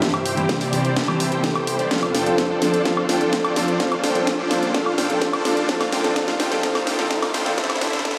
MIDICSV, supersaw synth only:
0, 0, Header, 1, 2, 480
1, 0, Start_track
1, 0, Key_signature, -1, "major"
1, 0, Tempo, 472441
1, 20, Time_signature, 4, 2, 24, 8
1, 8313, End_track
2, 0, Start_track
2, 0, Title_t, "Supersaw synth"
2, 0, Program_c, 0, 81
2, 20, Note_on_c, 0, 67, 95
2, 20, Note_on_c, 0, 72, 87
2, 20, Note_on_c, 0, 76, 106
2, 199, Note_off_c, 0, 67, 0
2, 199, Note_off_c, 0, 72, 0
2, 199, Note_off_c, 0, 76, 0
2, 260, Note_on_c, 0, 67, 88
2, 260, Note_on_c, 0, 72, 81
2, 260, Note_on_c, 0, 79, 97
2, 591, Note_off_c, 0, 67, 0
2, 591, Note_off_c, 0, 79, 0
2, 592, Note_off_c, 0, 72, 0
2, 619, Note_on_c, 0, 67, 101
2, 619, Note_on_c, 0, 74, 110
2, 620, Note_on_c, 0, 72, 92
2, 951, Note_off_c, 0, 67, 0
2, 951, Note_off_c, 0, 72, 0
2, 951, Note_off_c, 0, 74, 0
2, 980, Note_on_c, 0, 67, 82
2, 980, Note_on_c, 0, 72, 75
2, 980, Note_on_c, 0, 81, 87
2, 1311, Note_off_c, 0, 67, 0
2, 1311, Note_off_c, 0, 72, 0
2, 1311, Note_off_c, 0, 81, 0
2, 1340, Note_on_c, 0, 67, 89
2, 1340, Note_on_c, 0, 72, 80
2, 1340, Note_on_c, 0, 79, 99
2, 1791, Note_off_c, 0, 72, 0
2, 1792, Note_off_c, 0, 67, 0
2, 1792, Note_off_c, 0, 79, 0
2, 1820, Note_on_c, 0, 67, 88
2, 1820, Note_on_c, 0, 72, 83
2, 1820, Note_on_c, 0, 74, 99
2, 1911, Note_off_c, 0, 67, 0
2, 1911, Note_off_c, 0, 72, 0
2, 1911, Note_off_c, 0, 74, 0
2, 1940, Note_on_c, 0, 62, 88
2, 1940, Note_on_c, 0, 65, 79
2, 1940, Note_on_c, 0, 69, 79
2, 1940, Note_on_c, 0, 72, 80
2, 1940, Note_on_c, 0, 77, 96
2, 2119, Note_off_c, 0, 62, 0
2, 2119, Note_off_c, 0, 65, 0
2, 2119, Note_off_c, 0, 69, 0
2, 2119, Note_off_c, 0, 72, 0
2, 2119, Note_off_c, 0, 77, 0
2, 2180, Note_on_c, 0, 62, 79
2, 2180, Note_on_c, 0, 65, 76
2, 2180, Note_on_c, 0, 69, 78
2, 2180, Note_on_c, 0, 72, 77
2, 2180, Note_on_c, 0, 79, 92
2, 2511, Note_off_c, 0, 62, 0
2, 2511, Note_off_c, 0, 65, 0
2, 2511, Note_off_c, 0, 69, 0
2, 2512, Note_off_c, 0, 72, 0
2, 2512, Note_off_c, 0, 79, 0
2, 2539, Note_on_c, 0, 72, 83
2, 2540, Note_on_c, 0, 62, 91
2, 2540, Note_on_c, 0, 65, 82
2, 2540, Note_on_c, 0, 69, 83
2, 2540, Note_on_c, 0, 74, 99
2, 2871, Note_off_c, 0, 62, 0
2, 2871, Note_off_c, 0, 65, 0
2, 2871, Note_off_c, 0, 69, 0
2, 2871, Note_off_c, 0, 72, 0
2, 2871, Note_off_c, 0, 74, 0
2, 2900, Note_on_c, 0, 62, 90
2, 2900, Note_on_c, 0, 65, 86
2, 2900, Note_on_c, 0, 69, 84
2, 2900, Note_on_c, 0, 72, 86
2, 2900, Note_on_c, 0, 77, 101
2, 3078, Note_off_c, 0, 77, 0
2, 3079, Note_off_c, 0, 62, 0
2, 3079, Note_off_c, 0, 65, 0
2, 3079, Note_off_c, 0, 69, 0
2, 3079, Note_off_c, 0, 72, 0
2, 3139, Note_on_c, 0, 69, 76
2, 3140, Note_on_c, 0, 62, 88
2, 3140, Note_on_c, 0, 65, 76
2, 3140, Note_on_c, 0, 72, 79
2, 3140, Note_on_c, 0, 79, 95
2, 3471, Note_off_c, 0, 62, 0
2, 3471, Note_off_c, 0, 65, 0
2, 3471, Note_off_c, 0, 69, 0
2, 3471, Note_off_c, 0, 72, 0
2, 3471, Note_off_c, 0, 79, 0
2, 3499, Note_on_c, 0, 65, 86
2, 3500, Note_on_c, 0, 62, 95
2, 3500, Note_on_c, 0, 69, 85
2, 3500, Note_on_c, 0, 72, 89
2, 3500, Note_on_c, 0, 74, 101
2, 3831, Note_off_c, 0, 62, 0
2, 3831, Note_off_c, 0, 65, 0
2, 3831, Note_off_c, 0, 69, 0
2, 3831, Note_off_c, 0, 72, 0
2, 3831, Note_off_c, 0, 74, 0
2, 3860, Note_on_c, 0, 62, 89
2, 3860, Note_on_c, 0, 65, 82
2, 3860, Note_on_c, 0, 69, 83
2, 3860, Note_on_c, 0, 72, 82
2, 3860, Note_on_c, 0, 77, 98
2, 4039, Note_off_c, 0, 62, 0
2, 4039, Note_off_c, 0, 65, 0
2, 4039, Note_off_c, 0, 69, 0
2, 4039, Note_off_c, 0, 72, 0
2, 4039, Note_off_c, 0, 77, 0
2, 4100, Note_on_c, 0, 62, 82
2, 4100, Note_on_c, 0, 65, 79
2, 4100, Note_on_c, 0, 69, 78
2, 4100, Note_on_c, 0, 72, 76
2, 4100, Note_on_c, 0, 79, 95
2, 4431, Note_off_c, 0, 62, 0
2, 4431, Note_off_c, 0, 65, 0
2, 4431, Note_off_c, 0, 69, 0
2, 4431, Note_off_c, 0, 72, 0
2, 4431, Note_off_c, 0, 79, 0
2, 4460, Note_on_c, 0, 62, 97
2, 4460, Note_on_c, 0, 65, 88
2, 4460, Note_on_c, 0, 69, 83
2, 4460, Note_on_c, 0, 72, 88
2, 4460, Note_on_c, 0, 74, 106
2, 4791, Note_off_c, 0, 62, 0
2, 4791, Note_off_c, 0, 65, 0
2, 4791, Note_off_c, 0, 69, 0
2, 4791, Note_off_c, 0, 72, 0
2, 4791, Note_off_c, 0, 74, 0
2, 4820, Note_on_c, 0, 62, 94
2, 4820, Note_on_c, 0, 65, 88
2, 4820, Note_on_c, 0, 72, 89
2, 4820, Note_on_c, 0, 77, 101
2, 4999, Note_off_c, 0, 62, 0
2, 4999, Note_off_c, 0, 65, 0
2, 4999, Note_off_c, 0, 72, 0
2, 4999, Note_off_c, 0, 77, 0
2, 5059, Note_on_c, 0, 62, 90
2, 5059, Note_on_c, 0, 65, 78
2, 5059, Note_on_c, 0, 69, 80
2, 5059, Note_on_c, 0, 72, 78
2, 5059, Note_on_c, 0, 79, 94
2, 5391, Note_off_c, 0, 62, 0
2, 5391, Note_off_c, 0, 65, 0
2, 5391, Note_off_c, 0, 69, 0
2, 5391, Note_off_c, 0, 72, 0
2, 5391, Note_off_c, 0, 79, 0
2, 5419, Note_on_c, 0, 62, 98
2, 5419, Note_on_c, 0, 65, 90
2, 5419, Note_on_c, 0, 69, 91
2, 5419, Note_on_c, 0, 72, 92
2, 5419, Note_on_c, 0, 74, 109
2, 5751, Note_off_c, 0, 62, 0
2, 5751, Note_off_c, 0, 65, 0
2, 5751, Note_off_c, 0, 69, 0
2, 5751, Note_off_c, 0, 72, 0
2, 5751, Note_off_c, 0, 74, 0
2, 5779, Note_on_c, 0, 62, 94
2, 5779, Note_on_c, 0, 65, 84
2, 5779, Note_on_c, 0, 69, 85
2, 5779, Note_on_c, 0, 72, 86
2, 5779, Note_on_c, 0, 77, 101
2, 5958, Note_off_c, 0, 62, 0
2, 5958, Note_off_c, 0, 65, 0
2, 5958, Note_off_c, 0, 69, 0
2, 5958, Note_off_c, 0, 72, 0
2, 5958, Note_off_c, 0, 77, 0
2, 6019, Note_on_c, 0, 62, 91
2, 6019, Note_on_c, 0, 65, 82
2, 6019, Note_on_c, 0, 69, 78
2, 6019, Note_on_c, 0, 72, 80
2, 6019, Note_on_c, 0, 79, 100
2, 6240, Note_off_c, 0, 62, 0
2, 6240, Note_off_c, 0, 65, 0
2, 6240, Note_off_c, 0, 69, 0
2, 6240, Note_off_c, 0, 72, 0
2, 6240, Note_off_c, 0, 79, 0
2, 6499, Note_on_c, 0, 62, 86
2, 6499, Note_on_c, 0, 65, 81
2, 6499, Note_on_c, 0, 69, 80
2, 6499, Note_on_c, 0, 72, 80
2, 6499, Note_on_c, 0, 79, 97
2, 6721, Note_off_c, 0, 62, 0
2, 6721, Note_off_c, 0, 65, 0
2, 6721, Note_off_c, 0, 69, 0
2, 6721, Note_off_c, 0, 72, 0
2, 6721, Note_off_c, 0, 79, 0
2, 6739, Note_on_c, 0, 62, 98
2, 6739, Note_on_c, 0, 65, 88
2, 6739, Note_on_c, 0, 69, 89
2, 6739, Note_on_c, 0, 72, 91
2, 6739, Note_on_c, 0, 77, 107
2, 6918, Note_off_c, 0, 62, 0
2, 6918, Note_off_c, 0, 65, 0
2, 6918, Note_off_c, 0, 69, 0
2, 6918, Note_off_c, 0, 72, 0
2, 6918, Note_off_c, 0, 77, 0
2, 6979, Note_on_c, 0, 69, 86
2, 6980, Note_on_c, 0, 62, 94
2, 6980, Note_on_c, 0, 65, 87
2, 6980, Note_on_c, 0, 72, 84
2, 6980, Note_on_c, 0, 79, 103
2, 7201, Note_off_c, 0, 62, 0
2, 7201, Note_off_c, 0, 65, 0
2, 7201, Note_off_c, 0, 69, 0
2, 7201, Note_off_c, 0, 72, 0
2, 7201, Note_off_c, 0, 79, 0
2, 7219, Note_on_c, 0, 77, 110
2, 7220, Note_on_c, 0, 62, 97
2, 7220, Note_on_c, 0, 65, 89
2, 7220, Note_on_c, 0, 69, 89
2, 7220, Note_on_c, 0, 72, 91
2, 7399, Note_off_c, 0, 62, 0
2, 7399, Note_off_c, 0, 65, 0
2, 7399, Note_off_c, 0, 69, 0
2, 7399, Note_off_c, 0, 72, 0
2, 7399, Note_off_c, 0, 77, 0
2, 7460, Note_on_c, 0, 62, 89
2, 7460, Note_on_c, 0, 65, 82
2, 7460, Note_on_c, 0, 69, 81
2, 7460, Note_on_c, 0, 72, 81
2, 7460, Note_on_c, 0, 79, 96
2, 7681, Note_off_c, 0, 62, 0
2, 7681, Note_off_c, 0, 65, 0
2, 7681, Note_off_c, 0, 69, 0
2, 7681, Note_off_c, 0, 72, 0
2, 7681, Note_off_c, 0, 79, 0
2, 7699, Note_on_c, 0, 62, 96
2, 7699, Note_on_c, 0, 64, 87
2, 7699, Note_on_c, 0, 72, 88
2, 7699, Note_on_c, 0, 76, 107
2, 7700, Note_on_c, 0, 69, 89
2, 7878, Note_off_c, 0, 62, 0
2, 7878, Note_off_c, 0, 64, 0
2, 7878, Note_off_c, 0, 72, 0
2, 7878, Note_off_c, 0, 76, 0
2, 7879, Note_off_c, 0, 69, 0
2, 7939, Note_on_c, 0, 62, 101
2, 7939, Note_on_c, 0, 64, 88
2, 7939, Note_on_c, 0, 69, 89
2, 7939, Note_on_c, 0, 72, 89
2, 7939, Note_on_c, 0, 76, 107
2, 8118, Note_off_c, 0, 62, 0
2, 8118, Note_off_c, 0, 64, 0
2, 8118, Note_off_c, 0, 69, 0
2, 8118, Note_off_c, 0, 72, 0
2, 8118, Note_off_c, 0, 76, 0
2, 8179, Note_on_c, 0, 62, 100
2, 8179, Note_on_c, 0, 64, 88
2, 8179, Note_on_c, 0, 69, 89
2, 8179, Note_on_c, 0, 72, 94
2, 8179, Note_on_c, 0, 76, 111
2, 8313, Note_off_c, 0, 62, 0
2, 8313, Note_off_c, 0, 64, 0
2, 8313, Note_off_c, 0, 69, 0
2, 8313, Note_off_c, 0, 72, 0
2, 8313, Note_off_c, 0, 76, 0
2, 8313, End_track
0, 0, End_of_file